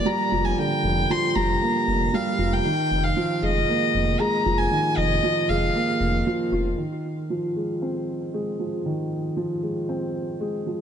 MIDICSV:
0, 0, Header, 1, 4, 480
1, 0, Start_track
1, 0, Tempo, 517241
1, 538, Time_signature, 4, 2, 24, 8
1, 10032, End_track
2, 0, Start_track
2, 0, Title_t, "Violin"
2, 0, Program_c, 0, 40
2, 54, Note_on_c, 0, 82, 100
2, 414, Note_on_c, 0, 80, 88
2, 428, Note_off_c, 0, 82, 0
2, 542, Note_on_c, 0, 79, 97
2, 556, Note_off_c, 0, 80, 0
2, 1027, Note_on_c, 0, 84, 103
2, 1040, Note_off_c, 0, 79, 0
2, 1256, Note_on_c, 0, 82, 99
2, 1270, Note_off_c, 0, 84, 0
2, 1988, Note_on_c, 0, 77, 93
2, 2002, Note_off_c, 0, 82, 0
2, 2347, Note_on_c, 0, 79, 95
2, 2361, Note_off_c, 0, 77, 0
2, 2818, Note_on_c, 0, 77, 90
2, 2832, Note_off_c, 0, 79, 0
2, 3179, Note_on_c, 0, 75, 97
2, 3193, Note_off_c, 0, 77, 0
2, 3899, Note_on_c, 0, 82, 97
2, 3913, Note_off_c, 0, 75, 0
2, 4251, Note_on_c, 0, 80, 93
2, 4265, Note_off_c, 0, 82, 0
2, 4608, Note_on_c, 0, 75, 103
2, 4622, Note_off_c, 0, 80, 0
2, 5097, Note_on_c, 0, 77, 89
2, 5111, Note_off_c, 0, 75, 0
2, 5818, Note_off_c, 0, 77, 0
2, 10032, End_track
3, 0, Start_track
3, 0, Title_t, "Felt piano"
3, 0, Program_c, 1, 0
3, 0, Control_c, 1, 64, 127
3, 0, Note_on_c, 1, 50, 74
3, 0, Note_on_c, 1, 53, 88
3, 0, Note_on_c, 1, 55, 72
3, 0, Note_on_c, 1, 58, 79
3, 50, Note_off_c, 1, 55, 0
3, 50, Note_on_c, 1, 55, 97
3, 282, Note_off_c, 1, 55, 0
3, 295, Note_off_c, 1, 53, 0
3, 295, Note_on_c, 1, 53, 75
3, 525, Note_off_c, 1, 53, 0
3, 539, Note_off_c, 1, 50, 0
3, 539, Note_on_c, 1, 50, 76
3, 767, Note_off_c, 1, 50, 0
3, 1022, Note_on_c, 1, 53, 95
3, 1248, Note_off_c, 1, 53, 0
3, 1261, Note_on_c, 1, 55, 70
3, 1397, Note_off_c, 1, 55, 0
3, 1503, Note_off_c, 1, 58, 0
3, 1503, Note_on_c, 1, 58, 79
3, 1729, Note_off_c, 1, 58, 0
3, 1983, Note_on_c, 1, 55, 91
3, 2209, Note_off_c, 1, 55, 0
3, 2217, Note_on_c, 1, 53, 68
3, 2446, Note_off_c, 1, 53, 0
3, 2462, Note_on_c, 1, 51, 79
3, 2471, Control_c, 1, 64, 0
3, 2641, Control_c, 1, 64, 127
3, 2688, Note_off_c, 1, 51, 0
3, 2938, Note_on_c, 1, 53, 93
3, 3166, Note_off_c, 1, 53, 0
3, 3177, Note_on_c, 1, 56, 69
3, 3315, Note_off_c, 1, 56, 0
3, 3422, Note_on_c, 1, 58, 76
3, 3648, Note_off_c, 1, 58, 0
3, 3898, Note_on_c, 1, 56, 91
3, 4126, Note_off_c, 1, 56, 0
3, 4136, Note_on_c, 1, 53, 73
3, 4365, Note_off_c, 1, 53, 0
3, 4373, Note_on_c, 1, 51, 80
3, 4604, Note_off_c, 1, 51, 0
3, 4857, Note_on_c, 1, 53, 93
3, 5086, Note_off_c, 1, 53, 0
3, 5101, Note_on_c, 1, 56, 69
3, 5237, Note_off_c, 1, 56, 0
3, 5335, Note_on_c, 1, 58, 82
3, 5565, Note_off_c, 1, 58, 0
3, 5816, Note_on_c, 1, 53, 91
3, 6045, Note_off_c, 1, 53, 0
3, 6054, Note_on_c, 1, 65, 77
3, 6284, Note_off_c, 1, 65, 0
3, 6292, Note_on_c, 1, 51, 62
3, 6309, Control_c, 1, 64, 0
3, 6465, Control_c, 1, 64, 127
3, 6523, Note_off_c, 1, 51, 0
3, 6775, Note_on_c, 1, 53, 73
3, 7005, Note_off_c, 1, 53, 0
3, 7017, Note_on_c, 1, 56, 58
3, 7154, Note_off_c, 1, 56, 0
3, 7256, Note_on_c, 1, 60, 67
3, 7485, Note_off_c, 1, 60, 0
3, 7738, Note_on_c, 1, 56, 79
3, 7966, Note_off_c, 1, 56, 0
3, 7975, Note_on_c, 1, 53, 60
3, 8205, Note_off_c, 1, 53, 0
3, 8217, Note_on_c, 1, 51, 65
3, 8446, Note_off_c, 1, 51, 0
3, 8693, Note_on_c, 1, 53, 74
3, 8924, Note_off_c, 1, 53, 0
3, 8936, Note_on_c, 1, 56, 58
3, 9074, Note_off_c, 1, 56, 0
3, 9177, Note_on_c, 1, 60, 68
3, 9406, Note_off_c, 1, 60, 0
3, 9656, Note_on_c, 1, 56, 76
3, 9885, Note_off_c, 1, 56, 0
3, 9898, Note_on_c, 1, 53, 58
3, 10032, Note_off_c, 1, 53, 0
3, 10032, End_track
4, 0, Start_track
4, 0, Title_t, "Detuned saw bass"
4, 0, Program_c, 2, 39
4, 298, Note_on_c, 2, 29, 91
4, 496, Note_off_c, 2, 29, 0
4, 777, Note_on_c, 2, 29, 104
4, 975, Note_off_c, 2, 29, 0
4, 1260, Note_on_c, 2, 29, 89
4, 1457, Note_off_c, 2, 29, 0
4, 1743, Note_on_c, 2, 29, 76
4, 1938, Note_off_c, 2, 29, 0
4, 2215, Note_on_c, 2, 29, 98
4, 2414, Note_off_c, 2, 29, 0
4, 2702, Note_on_c, 2, 29, 102
4, 2897, Note_off_c, 2, 29, 0
4, 3178, Note_on_c, 2, 29, 94
4, 3375, Note_off_c, 2, 29, 0
4, 3662, Note_on_c, 2, 29, 76
4, 3858, Note_off_c, 2, 29, 0
4, 4140, Note_on_c, 2, 29, 103
4, 4336, Note_off_c, 2, 29, 0
4, 4616, Note_on_c, 2, 29, 103
4, 4814, Note_off_c, 2, 29, 0
4, 5097, Note_on_c, 2, 29, 95
4, 5295, Note_off_c, 2, 29, 0
4, 5572, Note_on_c, 2, 29, 77
4, 5773, Note_off_c, 2, 29, 0
4, 6049, Note_on_c, 2, 29, 101
4, 6251, Note_off_c, 2, 29, 0
4, 10032, End_track
0, 0, End_of_file